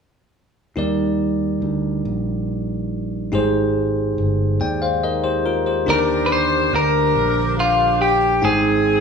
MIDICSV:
0, 0, Header, 1, 6, 480
1, 0, Start_track
1, 0, Key_signature, -3, "major"
1, 0, Tempo, 851064
1, 435, Time_signature, 6, 3, 24, 8
1, 5078, End_track
2, 0, Start_track
2, 0, Title_t, "Clean electric guitar"
2, 0, Program_c, 0, 27
2, 3328, Note_on_c, 0, 70, 87
2, 3381, Note_off_c, 0, 70, 0
2, 3532, Note_on_c, 0, 71, 60
2, 3564, Note_off_c, 0, 71, 0
2, 3566, Note_on_c, 0, 72, 72
2, 3808, Note_off_c, 0, 72, 0
2, 3810, Note_on_c, 0, 70, 83
2, 4261, Note_off_c, 0, 70, 0
2, 4287, Note_on_c, 0, 65, 73
2, 4518, Note_off_c, 0, 65, 0
2, 4521, Note_on_c, 0, 67, 70
2, 4762, Note_off_c, 0, 67, 0
2, 4764, Note_on_c, 0, 68, 72
2, 5078, Note_off_c, 0, 68, 0
2, 5078, End_track
3, 0, Start_track
3, 0, Title_t, "Tine electric piano"
3, 0, Program_c, 1, 4
3, 427, Note_on_c, 1, 63, 46
3, 432, Note_on_c, 1, 67, 42
3, 434, Note_on_c, 1, 55, 48
3, 438, Note_on_c, 1, 70, 43
3, 443, Note_on_c, 1, 74, 53
3, 536, Control_c, 1, 64, 127
3, 1134, Note_off_c, 1, 55, 0
3, 1851, Note_off_c, 1, 63, 0
3, 1854, Note_off_c, 1, 67, 0
3, 1856, Note_off_c, 1, 70, 0
3, 1859, Note_off_c, 1, 74, 0
3, 1872, Note_on_c, 1, 63, 50
3, 1878, Note_on_c, 1, 67, 47
3, 1879, Note_on_c, 1, 56, 56
3, 1882, Note_on_c, 1, 68, 51
3, 1885, Control_c, 1, 64, 0
3, 1889, Note_on_c, 1, 72, 61
3, 1988, Control_c, 1, 64, 127
3, 2576, Note_off_c, 1, 56, 0
3, 2584, Note_off_c, 1, 67, 0
3, 2586, Note_off_c, 1, 68, 0
3, 2589, Note_off_c, 1, 72, 0
3, 2599, Note_on_c, 1, 79, 51
3, 2604, Note_on_c, 1, 74, 42
3, 2713, Note_off_c, 1, 79, 0
3, 2715, Note_off_c, 1, 74, 0
3, 2717, Note_on_c, 1, 77, 50
3, 2722, Note_on_c, 1, 72, 41
3, 2832, Note_off_c, 1, 77, 0
3, 2834, Note_off_c, 1, 72, 0
3, 2840, Note_on_c, 1, 75, 56
3, 2843, Note_on_c, 1, 70, 47
3, 2953, Note_off_c, 1, 75, 0
3, 2953, Note_on_c, 1, 72, 54
3, 2955, Note_off_c, 1, 70, 0
3, 2956, Note_on_c, 1, 67, 48
3, 3070, Note_off_c, 1, 72, 0
3, 3071, Note_off_c, 1, 67, 0
3, 3078, Note_on_c, 1, 70, 52
3, 3081, Note_on_c, 1, 65, 43
3, 3192, Note_off_c, 1, 70, 0
3, 3193, Note_off_c, 1, 65, 0
3, 3194, Note_on_c, 1, 72, 44
3, 3199, Note_on_c, 1, 67, 39
3, 3293, Note_off_c, 1, 63, 0
3, 3304, Note_off_c, 1, 67, 0
3, 3307, Note_on_c, 1, 62, 52
3, 3311, Note_on_c, 1, 67, 45
3, 3313, Note_on_c, 1, 50, 52
3, 3316, Note_on_c, 1, 70, 45
3, 3321, Note_on_c, 1, 74, 56
3, 3326, Control_c, 1, 64, 0
3, 3423, Control_c, 1, 64, 127
3, 3424, Note_off_c, 1, 72, 0
3, 4013, Note_off_c, 1, 50, 0
3, 4728, Note_off_c, 1, 62, 0
3, 4730, Note_off_c, 1, 67, 0
3, 4733, Note_off_c, 1, 70, 0
3, 4736, Note_off_c, 1, 74, 0
3, 4747, Note_on_c, 1, 63, 54
3, 4751, Note_on_c, 1, 79, 48
3, 4754, Note_on_c, 1, 56, 50
3, 4756, Note_on_c, 1, 68, 46
3, 4762, Note_on_c, 1, 72, 52
3, 4763, Control_c, 1, 64, 0
3, 4877, Control_c, 1, 64, 127
3, 5078, Note_off_c, 1, 56, 0
3, 5078, Note_off_c, 1, 63, 0
3, 5078, Note_off_c, 1, 68, 0
3, 5078, Note_off_c, 1, 72, 0
3, 5078, Note_off_c, 1, 79, 0
3, 5078, End_track
4, 0, Start_track
4, 0, Title_t, "Saxophone section"
4, 0, Program_c, 2, 65
4, 3325, Note_on_c, 2, 70, 80
4, 3330, Note_on_c, 2, 62, 69
4, 3333, Note_on_c, 2, 67, 67
4, 3545, Note_off_c, 2, 70, 0
4, 3563, Note_on_c, 2, 72, 93
4, 3796, Note_off_c, 2, 62, 0
4, 3799, Note_off_c, 2, 67, 0
4, 3800, Note_off_c, 2, 72, 0
4, 3801, Note_on_c, 2, 70, 86
4, 3802, Note_on_c, 2, 62, 63
4, 3806, Note_on_c, 2, 67, 64
4, 4273, Note_on_c, 2, 65, 77
4, 4279, Note_off_c, 2, 70, 0
4, 4497, Note_off_c, 2, 62, 0
4, 4498, Note_off_c, 2, 67, 0
4, 4515, Note_off_c, 2, 65, 0
4, 4516, Note_on_c, 2, 67, 78
4, 4739, Note_off_c, 2, 67, 0
4, 4759, Note_on_c, 2, 68, 85
4, 4764, Note_on_c, 2, 60, 58
4, 4768, Note_on_c, 2, 63, 59
4, 5078, Note_off_c, 2, 60, 0
4, 5078, Note_off_c, 2, 63, 0
4, 5078, Note_off_c, 2, 68, 0
4, 5078, End_track
5, 0, Start_track
5, 0, Title_t, "French horn section"
5, 0, Program_c, 3, 60
5, 3311, Note_on_c, 3, 58, 59
5, 3312, Note_on_c, 3, 55, 52
5, 3315, Note_on_c, 3, 62, 67
5, 3317, Note_on_c, 3, 50, 59
5, 4739, Note_off_c, 3, 55, 0
5, 4739, Note_off_c, 3, 58, 0
5, 4741, Note_off_c, 3, 62, 0
5, 4742, Note_off_c, 3, 50, 0
5, 4753, Note_on_c, 3, 63, 70
5, 4754, Note_on_c, 3, 51, 61
5, 4754, Note_on_c, 3, 60, 54
5, 4755, Note_on_c, 3, 56, 51
5, 5078, Note_off_c, 3, 51, 0
5, 5078, Note_off_c, 3, 56, 0
5, 5078, Note_off_c, 3, 60, 0
5, 5078, Note_off_c, 3, 63, 0
5, 5078, End_track
6, 0, Start_track
6, 0, Title_t, "Fingered electric bass"
6, 0, Program_c, 4, 33
6, 432, Note_on_c, 4, 39, 72
6, 892, Note_off_c, 4, 39, 0
6, 913, Note_on_c, 4, 38, 54
6, 1136, Note_off_c, 4, 38, 0
6, 1158, Note_on_c, 4, 34, 58
6, 1856, Note_off_c, 4, 34, 0
6, 1875, Note_on_c, 4, 32, 71
6, 2334, Note_off_c, 4, 32, 0
6, 2358, Note_on_c, 4, 31, 58
6, 2579, Note_off_c, 4, 31, 0
6, 2593, Note_on_c, 4, 39, 68
6, 3293, Note_off_c, 4, 39, 0
6, 3317, Note_on_c, 4, 39, 86
6, 3775, Note_off_c, 4, 39, 0
6, 3796, Note_on_c, 4, 38, 73
6, 4017, Note_off_c, 4, 38, 0
6, 4034, Note_on_c, 4, 34, 68
6, 4732, Note_off_c, 4, 34, 0
6, 4753, Note_on_c, 4, 32, 86
6, 5078, Note_off_c, 4, 32, 0
6, 5078, End_track
0, 0, End_of_file